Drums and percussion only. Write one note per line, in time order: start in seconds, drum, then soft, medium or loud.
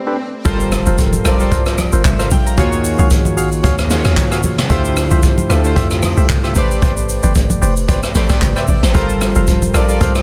0.45 kick loud
0.45 low conga medium
0.45 shaker medium
0.60 shaker medium
0.72 cross-stick loud
0.72 open hi-hat medium
0.72 shaker medium
0.86 high conga medium
0.86 shaker medium
0.98 kick loud
0.98 hi-hat pedal medium
0.98 shaker medium
1.13 high conga medium
1.13 shaker medium
1.25 cross-stick loud
1.25 open hi-hat medium
1.25 shaker medium
1.39 shaker medium
1.51 kick loud
1.51 hi-hat pedal medium
1.51 low conga medium
1.51 shaker medium
1.66 cross-stick loud
1.66 shaker medium
1.78 cross-stick loud
1.78 open hi-hat medium
1.78 high conga medium
1.78 shaker loud
1.92 shaker medium
2.05 kick loud
2.05 clap loud
2.05 hi-hat pedal medium
2.05 mid tom loud
2.05 shaker medium
2.19 cross-stick medium
2.19 shaker medium
2.31 open hi-hat medium
2.31 high conga medium
2.31 low conga medium
2.31 shaker medium
2.47 shaker medium
2.58 kick loud
2.58 hi-hat pedal medium
2.58 low conga medium
2.58 shaker medium
2.72 shaker medium
2.84 open hi-hat medium
2.84 shaker medium
2.98 high conga medium
2.98 shaker medium
3.10 kick loud
3.10 hi-hat pedal medium
3.10 shaker medium
3.25 high conga medium
3.25 shaker medium
3.38 open hi-hat medium
3.38 shaker medium
3.52 shaker medium
3.64 kick loud
3.64 hi-hat pedal medium
3.64 low conga medium
3.64 shaker medium
3.78 cross-stick loud
3.78 shaker medium
3.90 snare medium
3.90 open hi-hat medium
3.90 high conga medium
3.90 shaker loud
4.05 cross-stick loud
4.05 snare medium
4.05 shaker medium
4.17 kick loud
4.17 clap loud
4.17 hi-hat pedal medium
4.17 mid tom loud
4.17 shaker medium
4.32 cross-stick medium
4.32 shaker medium
4.43 open hi-hat medium
4.43 high conga medium
4.43 low conga medium
4.43 shaker medium
4.58 snare medium
4.58 mid tom medium
4.58 shaker medium
4.70 kick loud
4.70 hi-hat pedal medium
4.70 low conga medium
4.70 shaker medium
4.85 shaker medium
4.97 cross-stick loud
4.97 open hi-hat medium
4.97 shaker medium
5.11 high conga medium
5.11 shaker medium
5.23 kick loud
5.23 hi-hat pedal medium
5.23 shaker medium
5.38 high conga loud
5.38 shaker medium
5.50 cross-stick loud
5.50 open hi-hat medium
5.50 shaker medium
5.64 shaker medium
5.76 kick loud
5.76 hi-hat pedal medium
5.76 low conga medium
5.76 shaker medium
5.91 cross-stick loud
5.91 shaker medium
6.03 cross-stick loud
6.03 open hi-hat medium
6.03 high conga medium
6.03 shaker loud
6.17 shaker medium
6.29 kick loud
6.29 clap loud
6.29 hi-hat pedal medium
6.29 mid tom loud
6.29 shaker medium
6.44 cross-stick medium
6.44 shaker medium
6.55 open hi-hat medium
6.55 high conga medium
6.55 low conga medium
6.55 shaker medium
6.71 shaker medium
6.82 kick loud
6.82 hi-hat pedal medium
6.82 low conga medium
6.82 shaker medium
6.97 shaker medium
7.09 open hi-hat medium
7.09 shaker medium
7.23 high conga medium
7.23 shaker medium
7.35 kick loud
7.35 hi-hat pedal medium
7.35 shaker medium
7.50 high conga medium
7.50 shaker medium
7.62 open hi-hat medium
7.62 shaker medium
7.76 shaker medium
7.88 kick loud
7.88 hi-hat pedal medium
7.88 low conga medium
7.88 shaker medium
8.03 cross-stick loud
8.03 shaker medium
8.15 snare medium
8.15 open hi-hat medium
8.15 high conga medium
8.15 shaker medium
8.29 kick medium
8.29 cross-stick loud
8.29 snare medium
8.29 shaker medium
8.42 kick medium
8.42 clap loud
8.42 hi-hat pedal medium
8.42 mid tom loud
8.42 shaker medium
8.56 cross-stick medium
8.56 shaker medium
8.67 open hi-hat medium
8.67 high conga medium
8.67 low conga medium
8.67 shaker medium
8.83 snare medium
8.83 shaker medium
8.95 kick loud
8.95 hi-hat pedal medium
8.95 low conga medium
8.95 shaker medium
9.09 shaker medium
9.21 cross-stick loud
9.21 open hi-hat medium
9.21 shaker medium
9.35 high conga medium
9.35 shaker medium
9.47 kick loud
9.47 hi-hat pedal medium
9.47 shaker medium
9.62 high conga medium
9.62 shaker medium
9.74 cross-stick loud
9.74 open hi-hat medium
9.74 shaker medium
9.89 shaker medium
10.01 kick loud
10.01 hi-hat pedal medium
10.01 low conga medium
10.01 shaker medium
10.15 cross-stick loud
10.15 shaker medium